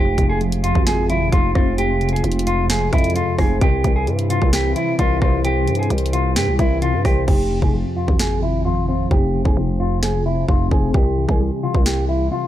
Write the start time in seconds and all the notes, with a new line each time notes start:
Already playing: F1 F2 C3 F3 G#3 F4 G4
0.18 F1 C3, kick, closed hi-hat
0.29 G#4
0.41 F3, closed hi-hat
0.52 closed hi-hat
0.64 F2 F4, closed hi-hat
0.75 G#1, kick
0.87 F2 G#4, snare, closed hi-hat
1.10 C3 E4, closed hi-hat
1.32 F1 F2 F4, kick, closed hi-hat
1.55 F1 C4 F4, kick, cross-stick
1.78 F2 G4, closed hi-hat
2.01 C3, closed hi-hat
2.09 closed hi-hat
2.13 G#4, closed hi-hat
2.24 F1 F3, closed hi-hat
2.32 closed hi-hat
2.39 closed hi-hat
2.47 F2 F4, closed hi-hat
2.70 F2 G#4, snare, closed hi-hat
2.93 F2 C3 E4, kick, closed hi-hat
2.98 closed hi-hat
3.04 closed hi-hat
3.10 closed hi-hat
3.15 F2 F4, closed hi-hat
3.38 F1 C4 G#4, kick, cross-stick, open hi-hat
3.61 C2 C3 E3 G3 E4 G4, kick, closed hi-hat
3.84 C2 E3, kick, closed hi-hat
3.96 G#4
4.07 G2 G3, closed hi-hat
4.19 closed hi-hat
4.30 C3 F4, closed hi-hat
4.42 C2, kick
4.53 C3 G4, snare, closed hi-hat
4.76 E3 E4, closed hi-hat
4.99 C2 C3 F4, kick, closed hi-hat
5.22 C2 F4 C5, kick, cross-stick
5.45 C3 G4, closed hi-hat
5.67 G2 E3, closed hi-hat
5.75 G#4, closed hi-hat
5.83 closed hi-hat
5.90 C2 G3, closed hi-hat
5.98 closed hi-hat
6.06 closed hi-hat
6.13 C3 F4, closed hi-hat
6.36 G2 C3 G4, snare, closed hi-hat
6.48 C2
6.59 C2 E3 E4, kick, closed hi-hat
6.82 C3 F4, closed hi-hat
6.94 G2
7.05 C2 G4 C5, kick, cross-stick, open hi-hat
7.28 F1 F2 G4, kick, crash
7.51 C3
7.62 F1 G#4, kick
7.74 F3
7.96 F2 F4
8.08 G#1, kick
8.19 F2 G#4, snare
8.42 C3 E4
8.65 F2 F4
8.88 C4 F4
9.11 F1 F2 G4, kick
9.34 C3
9.45 F1 G#4, kick
9.57 F1 F3
9.80 F2 F4
10.03 F2 G#4, snare
10.26 C3 E4
10.48 F1 F2 F4, kick
10.71 F1 C4 G#4, kick
10.94 C2 C3 G4, kick
11.17 E3
11.29 C2 G#4, kick
11.40 G3
11.63 C3 F4
11.74 C2, kick
11.85 C3 G4, snare
12.08 E3 E4
12.31 C3 F4